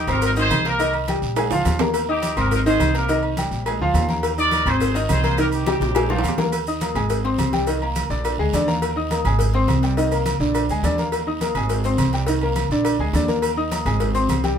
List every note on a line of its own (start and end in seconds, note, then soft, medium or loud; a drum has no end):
0.07 0.47 G#1 loud
0.07 0.31 C4 medium
0.07 0.22 G4 medium
0.07 0.22 A#4 medium
0.07 0.32 C5 medium
0.07 0.32 C6 medium
0.07 cowbell medium
0.07 low conga medium
0.07 low agogo loud
0.07 short guiro medium
0.07 maracas soft
0.22 0.30 D#4 medium
0.22 0.31 A#4 loud
0.22 cowbell medium
0.22 high conga soft
0.22 low agogo medium
0.22 long guiro medium
0.22 maracas medium
0.36 0.60 D#3 loud
0.36 0.60 D#4 loud
0.36 0.64 G#4 loud
0.36 0.64 C5 loud
0.36 0.60 D#5 loud
0.36 cowbell medium
0.36 high conga soft
0.36 maracas medium
0.50 1.17 C2 medium
0.50 cowbell medium
0.50 high conga medium
0.50 low timbale medium
0.50 low agogo loud
0.50 short guiro medium
0.50 maracas medium
0.65 0.77 A#3 medium
0.65 0.93 G4 medium
0.65 0.77 A#4 medium
0.65 0.93 A#4 medium
0.65 0.77 A#5 medium
0.65 cowbell medium
0.65 short guiro medium
0.65 maracas soft
0.79 1.03 D#3 medium
0.79 1.03 D#4 medium
0.79 1.03 D#5 medium
0.79 cowbell loud
0.79 low agogo medium
0.79 long guiro medium
0.79 maracas medium
0.94 high conga soft
0.94 low agogo loud
1.08 1.32 G3 medium
1.08 1.32 G4 medium
1.08 1.32 G5 medium
1.08 cowbell medium
1.08 high conga loud
1.08 low agogo loud
1.08 short guiro medium
1.08 maracas medium
1.22 1.49 A#1 medium
1.22 high conga soft
1.22 short guiro medium
1.22 maracas soft
1.36 1.49 G#3 medium
1.36 1.49 G#4 medium
1.36 1.49 G#5 medium
1.36 cowbell loud
1.36 high conga soft
1.36 high timbale loud
1.36 low agogo loud
1.36 long guiro medium
1.36 maracas medium
1.51 1.64 D2 medium
1.51 1.75 F3 medium
1.51 1.75 F4 medium
1.51 1.75 F5 medium
1.51 high conga soft
1.51 high timbale loud
1.51 maracas medium
1.65 2.31 D#2 medium
1.65 cowbell medium
1.65 high conga medium
1.65 low timbale medium
1.65 low agogo medium
1.65 short guiro medium
1.65 maracas medium
1.79 2.04 A#3 medium
1.79 2.04 A#4 medium
1.79 2.04 A#5 medium
1.79 high conga medium
1.79 low timbale loud
1.79 short guiro medium
1.79 maracas soft
1.94 cowbell loud
1.94 high conga soft
1.94 low agogo loud
1.94 long guiro medium
1.94 maracas medium
2.09 2.32 D#4 medium
2.09 2.36 D#4 medium
2.09 2.35 G4 medium
2.09 2.32 D#5 medium
2.09 2.33 D#6 medium
2.09 high conga soft
2.22 cowbell medium
2.22 high conga medium
2.22 low agogo medium
2.22 short guiro medium
2.22 maracas medium
2.37 2.77 G#1 medium
2.37 2.60 C4 medium
2.37 2.51 G4 medium
2.37 2.51 A#4 medium
2.37 2.61 C5 medium
2.37 2.61 C6 medium
2.37 cowbell medium
2.37 low conga medium
2.37 low agogo loud
2.37 short guiro medium
2.37 maracas soft
2.51 2.59 D#4 medium
2.51 2.59 A#4 medium
2.51 cowbell loud
2.51 high conga soft
2.51 low conga medium
2.51 low agogo medium
2.51 long guiro medium
2.51 maracas medium
2.66 2.89 D#3 loud
2.66 2.89 D#4 loud
2.66 2.93 G#4 medium
2.66 2.93 C5 loud
2.66 2.90 D#5 loud
2.66 cowbell medium
2.66 high conga soft
2.66 maracas medium
2.79 3.46 C2 medium
2.79 cowbell medium
2.79 high conga medium
2.79 low timbale medium
2.79 low agogo loud
2.79 short guiro medium
2.79 maracas medium
2.94 3.06 A#3 medium
2.94 3.22 G4 medium
2.94 3.06 A#4 medium
2.94 3.22 A#4 medium
2.94 3.06 A#5 medium
2.94 cowbell medium
2.94 short guiro medium
2.94 maracas soft
3.08 3.32 D#3 medium
3.08 3.32 D#4 medium
3.08 3.33 D#5 medium
3.08 cowbell loud
3.08 high conga soft
3.08 low agogo medium
3.08 maracas medium
3.23 high conga soft
3.23 low agogo medium
3.37 3.61 G3 medium
3.37 3.61 G4 medium
3.37 3.61 G5 medium
3.37 cowbell medium
3.37 high conga loud
3.37 low agogo medium
3.37 short guiro medium
3.37 maracas medium
3.51 3.78 A#1 medium
3.51 high conga soft
3.51 short guiro medium
3.51 maracas soft
3.66 3.78 G#3 medium
3.66 3.78 G#4 medium
3.66 3.78 G#5 medium
3.66 cowbell medium
3.66 high conga soft
3.66 low agogo loud
3.66 long guiro medium
3.66 maracas medium
3.80 3.93 D2 medium
3.80 4.04 F3 medium
3.80 4.05 F4 medium
3.80 4.05 F5 medium
3.80 high conga soft
3.94 4.60 D#2 loud
3.94 cowbell medium
3.94 high conga medium
3.94 low timbale medium
3.94 low agogo medium
3.94 short guiro medium
3.94 maracas medium
4.09 4.33 A#3 medium
4.09 4.33 A#4 medium
4.09 4.33 A#5 medium
4.09 high conga loud
4.09 short guiro medium
4.09 maracas soft
4.23 cowbell loud
4.23 low agogo loud
4.23 long guiro medium
4.23 maracas medium
4.37 4.61 D#4 medium
4.37 4.65 A#4 medium
4.37 4.65 D5 loud
4.37 4.61 D#5 medium
4.37 4.61 D#6 medium
4.37 high conga soft
4.37 maracas medium
4.51 cowbell medium
4.51 high conga loud
4.51 low agogo medium
4.51 short guiro medium
4.51 maracas medium
4.66 5.06 G#1 loud
4.66 4.90 C4 medium
4.66 4.96 G#4 medium
4.66 4.90 C5 medium
4.66 4.96 C5 loud
4.66 4.90 C6 medium
4.66 cowbell medium
4.66 low conga medium
4.66 low agogo loud
4.66 short guiro medium
4.66 maracas soft
4.80 cowbell loud
4.80 high conga soft
4.80 low conga medium
4.80 low agogo medium
4.80 long guiro medium
4.80 maracas medium
4.95 5.18 D#3 loud
4.95 5.18 D#4 loud
4.95 5.19 D#5 loud
4.95 cowbell medium
4.95 high conga soft
4.95 maracas medium
5.09 5.75 C2 medium
5.09 5.37 G#4 medium
5.09 5.37 C5 medium
5.09 cowbell medium
5.09 high conga medium
5.09 low timbale medium
5.09 low agogo loud
5.09 short guiro medium
5.09 maracas medium
5.23 5.35 A#3 medium
5.23 5.36 A#4 medium
5.23 5.36 A#5 medium
5.23 cowbell medium
5.23 high conga medium
5.23 short guiro medium
5.23 maracas soft
5.37 5.62 D#3 medium
5.37 5.62 D#4 medium
5.37 5.45 G4 medium
5.37 5.46 A#4 medium
5.37 5.62 D#5 medium
5.37 cowbell loud
5.37 high conga soft
5.37 low agogo medium
5.37 long guiro medium
5.37 maracas medium
5.52 5.93 D#4 medium
5.52 6.35 G4 medium
5.52 high conga soft
5.52 low agogo medium
5.52 maracas medium
5.66 5.90 G3 medium
5.66 5.90 G4 medium
5.66 5.91 G5 medium
5.66 cowbell medium
5.66 high bongo loud
5.66 high conga loud
5.66 low agogo medium
5.66 short guiro medium
5.66 maracas medium
5.80 6.21 A#1 loud
5.80 high bongo medium
5.80 high conga soft
5.80 short guiro medium
5.80 maracas soft
5.95 6.07 G#3 medium
5.95 6.07 G#4 medium
5.95 6.07 G#5 medium
5.95 cowbell loud
5.95 high bongo medium
5.95 high conga soft
5.95 low agogo loud
5.95 long guiro medium
5.95 maracas medium
6.09 6.33 F3 medium
6.09 6.33 F4 medium
6.09 6.33 F5 medium
6.09 low bongo loud
6.09 high conga soft
6.09 high timbale medium
6.19 high timbale loud
6.23 6.90 D#2 medium
6.23 cowbell medium
6.23 high conga medium
6.23 low agogo medium
6.23 short guiro medium
6.23 maracas medium
6.28 low timbale medium
6.38 6.50 A#3 medium
6.38 6.50 A#4 medium
6.38 6.50 A#5 medium
6.38 low bongo medium
6.38 high conga medium
6.38 low timbale medium
6.38 short guiro medium
6.38 maracas soft
6.52 cowbell loud
6.52 high conga soft
6.52 low agogo loud
6.52 long guiro medium
6.52 maracas medium
6.67 6.79 D#4 medium
6.67 6.79 D#5 medium
6.67 6.79 D#6 medium
6.67 high conga soft
6.67 maracas medium
6.81 6.93 A#3 medium
6.81 6.93 A#4 medium
6.81 6.93 A#5 medium
6.81 cowbell medium
6.81 high conga loud
6.81 low agogo medium
6.81 short guiro medium
6.81 maracas medium
6.95 7.35 G#1 medium
6.95 7.19 G#3 medium
6.95 7.19 G#4 medium
6.95 7.19 G#5 medium
6.95 cowbell medium
6.95 low conga medium
6.95 low agogo loud
6.95 short guiro medium
6.95 maracas soft
7.10 cowbell loud
7.10 high conga soft
7.10 low agogo medium
7.10 long guiro medium
7.10 maracas medium
7.24 7.48 C4 medium
7.24 7.48 C5 medium
7.24 7.48 C6 medium
7.24 cowbell medium
7.24 high conga soft
7.38 8.05 C2 medium
7.38 cowbell medium
7.38 high conga medium
7.38 low timbale medium
7.38 low agogo loud
7.38 short guiro medium
7.38 maracas medium
7.53 7.64 G3 medium
7.53 7.65 G4 medium
7.53 7.65 G5 medium
7.53 cowbell medium
7.53 high conga medium
7.53 short guiro medium
7.53 maracas soft
7.67 7.79 D#3 medium
7.67 7.80 D#4 medium
7.67 7.80 D#5 medium
7.67 cowbell loud
7.67 high conga soft
7.67 low agogo medium
7.67 long guiro medium
7.67 maracas medium
7.82 8.06 A#3 medium
7.82 8.06 A#4 medium
7.82 8.06 A#5 medium
7.82 high conga soft
7.82 low agogo medium
7.95 cowbell medium
7.95 high conga medium
7.95 low agogo medium
7.95 short guiro medium
7.95 maracas medium
8.10 8.37 A#1 medium
8.10 8.34 D3 medium
8.10 8.34 D4 medium
8.10 8.34 D5 medium
8.10 high conga soft
8.10 short guiro medium
8.10 maracas soft
8.25 cowbell loud
8.25 high conga soft
8.25 low agogo loud
8.25 long guiro medium
8.25 maracas medium
8.38 8.52 D2 medium
8.38 8.51 G#3 medium
8.38 8.51 G#4 medium
8.38 8.51 G#5 medium
8.38 high conga soft
8.53 9.20 D#2 loud
8.53 8.65 D3 loud
8.53 8.66 D4 loud
8.53 8.66 D5 loud
8.53 cowbell medium
8.53 high conga medium
8.53 low timbale medium
8.53 low agogo medium
8.53 short guiro medium
8.53 maracas medium
8.68 8.91 A#3 medium
8.68 8.91 A#4 medium
8.68 8.92 A#5 loud
8.68 high conga medium
8.68 short guiro medium
8.68 maracas soft
8.82 cowbell loud
8.82 high conga soft
8.82 low agogo loud
8.82 maracas medium
8.96 9.08 D#4 medium
8.96 9.08 D#5 medium
8.96 9.09 D#6 medium
8.96 high conga soft
9.11 9.23 A#3 medium
9.11 9.23 A#4 medium
9.11 9.23 A#5 medium
9.11 cowbell medium
9.11 high conga loud
9.11 low agogo medium
9.11 short guiro medium
9.11 maracas medium
9.25 9.65 G#1 loud
9.25 9.49 G#3 medium
9.25 9.49 G#4 medium
9.25 9.49 G#5 medium
9.25 cowbell medium
9.25 low conga medium
9.25 low agogo loud
9.25 short guiro medium
9.25 maracas soft
9.39 cowbell loud
9.39 high conga soft
9.39 low conga medium
9.39 low agogo medium
9.39 long guiro medium
9.39 maracas medium
9.54 9.78 C4 medium
9.54 9.78 C5 medium
9.54 9.78 C6 medium
9.54 cowbell medium
9.54 high conga soft
9.68 10.35 C2 loud
9.68 cowbell medium
9.68 high conga medium
9.68 low timbale medium
9.68 low agogo loud
9.68 short guiro medium
9.68 maracas medium
9.83 9.95 G3 medium
9.83 9.95 G4 medium
9.83 9.95 G5 medium
9.83 cowbell medium
9.83 short guiro medium
9.83 maracas soft
9.97 10.09 D#3 medium
9.97 10.09 D#4 medium
9.97 10.10 D#5 medium
9.97 cowbell loud
9.97 high conga soft
9.97 low agogo medium
9.97 long guiro medium
9.97 maracas medium
10.12 10.35 A#3 medium
10.12 10.35 A#4 medium
10.12 10.36 A#5 medium
10.12 high conga soft
10.12 low agogo medium
10.12 maracas medium
10.26 cowbell medium
10.26 high conga loud
10.26 low agogo medium
10.26 short guiro medium
10.26 maracas medium
10.40 10.67 A#1 loud
10.40 10.64 D3 medium
10.40 10.64 D4 medium
10.40 10.64 D5 medium
10.40 high conga soft
10.40 short guiro medium
10.40 maracas soft
10.55 cowbell loud
10.55 high conga soft
10.55 low agogo loud
10.55 long guiro medium
10.55 maracas medium
10.69 10.82 D2 medium
10.69 10.82 G#3 medium
10.69 10.82 G#4 medium
10.69 10.82 G#5 medium
10.69 high conga soft
10.69 maracas medium
10.83 11.50 D#2 medium
10.83 10.96 D3 medium
10.83 10.96 D4 medium
10.83 10.96 D5 medium
10.83 cowbell medium
10.83 high conga medium
10.83 low timbale medium
10.83 low agogo medium
10.83 short guiro medium
10.83 maracas medium
10.98 11.22 A#3 medium
10.98 11.22 A#4 medium
10.98 11.22 A#5 medium
10.98 high conga medium
10.98 short guiro medium
10.98 maracas soft
11.12 cowbell loud
11.12 high conga soft
11.12 low agogo medium
11.12 long guiro medium
11.12 maracas medium
11.27 11.39 D#4 medium
11.27 11.39 D#5 medium
11.27 11.39 D#6 medium
11.27 high conga soft
11.41 11.53 A#3 medium
11.41 11.54 A#4 medium
11.41 11.54 A#5 medium
11.41 cowbell medium
11.41 high conga medium
11.41 low agogo medium
11.41 short guiro medium
11.41 maracas medium
11.55 11.95 G#1 medium
11.55 11.80 G#3 medium
11.55 11.80 G#4 medium
11.55 11.80 G#5 medium
11.55 cowbell medium
11.55 low conga medium
11.55 low agogo loud
11.55 short guiro medium
11.55 maracas soft
11.69 cowbell loud
11.69 high conga soft
11.69 low agogo medium
11.69 long guiro medium
11.69 maracas medium
11.84 12.08 C4 medium
11.84 12.08 C5 medium
11.84 12.09 C6 medium
11.84 cowbell medium
11.84 high conga soft
11.84 maracas medium
11.98 12.65 C2 loud
11.98 cowbell medium
11.98 high conga medium
11.98 low timbale medium
11.98 low agogo loud
11.98 short guiro medium
11.98 maracas medium
12.13 12.25 G3 medium
12.13 12.25 G4 medium
12.13 12.25 G5 medium
12.13 cowbell medium
12.13 short guiro medium
12.13 maracas soft
12.27 12.40 D#3 medium
12.27 12.40 D#4 medium
12.27 12.40 D#5 medium
12.27 cowbell loud
12.27 high conga soft
12.27 low agogo medium
12.27 long guiro medium
12.27 maracas medium
12.41 12.66 A#3 medium
12.41 12.66 A#4 medium
12.41 12.67 A#5 medium
12.41 high conga soft
12.41 low agogo medium
12.56 cowbell medium
12.56 high conga medium
12.56 low agogo loud
12.56 short guiro medium
12.56 maracas medium
12.70 12.97 A#1 medium
12.70 12.95 D3 medium
12.70 12.95 D4 medium
12.70 12.95 D5 medium
12.70 high conga soft
12.70 short guiro medium
12.70 maracas soft
12.85 cowbell loud
12.85 high conga soft
12.85 low agogo loud
12.85 long guiro medium
12.85 maracas medium
12.99 13.13 D2 medium
12.99 13.12 G#3 medium
12.99 13.12 G#4 medium
12.99 13.12 G#5 medium
12.99 high conga soft
13.13 13.80 D#2 loud
13.13 13.26 D3 medium
13.13 13.26 D4 medium
13.13 13.27 D5 medium
13.13 cowbell medium
13.13 high conga medium
13.13 low timbale medium
13.13 low agogo medium
13.13 short guiro medium
13.13 maracas medium
13.28 13.52 A#3 medium
13.28 13.52 A#4 medium
13.28 13.52 A#5 medium
13.28 high conga medium
13.28 short guiro medium
13.28 maracas soft
13.42 cowbell loud
13.42 high conga soft
13.42 low agogo loud
13.42 long guiro medium
13.42 maracas medium
13.57 13.69 D#4 medium
13.57 13.69 D#5 medium
13.57 13.69 D#6 medium
13.57 high conga soft
13.71 13.84 A#3 medium
13.71 13.84 A#4 medium
13.71 13.84 A#5 medium
13.71 cowbell medium
13.71 high conga loud
13.71 low agogo medium
13.71 short guiro medium
13.71 maracas medium
13.85 14.26 G#1 loud
13.85 14.09 G#3 medium
13.85 14.10 G#4 medium
13.85 14.10 G#5 medium
13.85 cowbell medium
13.85 low conga medium
13.85 low agogo loud
13.85 short guiro medium
13.85 maracas soft
14.00 cowbell loud
14.00 high conga soft
14.00 low conga medium
14.00 low agogo medium
14.00 long guiro medium
14.00 maracas medium
14.14 14.38 C4 medium
14.14 14.38 C5 medium
14.14 14.39 C6 medium
14.14 cowbell medium
14.14 high conga soft
14.14 maracas medium
14.29 14.58 C2 medium
14.29 cowbell medium
14.29 high conga medium
14.29 low timbale medium
14.29 low agogo loud
14.29 short guiro medium
14.29 maracas medium
14.44 14.56 G3 medium
14.44 14.56 G4 medium
14.44 14.56 G5 medium
14.44 cowbell medium
14.44 high conga medium
14.44 short guiro medium
14.44 maracas soft